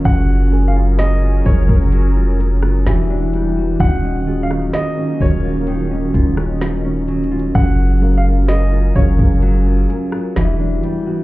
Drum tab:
HH |x-----------x-----------x-----x-----x-----x-----|x-----------x-----------x-----x-----x-----x-x-x-|x-----------x-----------x-----x-----x-----x-----|
SD |------------o--------------------r--o-----------|---------r--o--------------------r--o-----------|------------o--------------------r--o-----------|
BD |o-----------------o--o--------------------------|o-----------------o-----------o-----------------|o-----------------o--o--------------------------|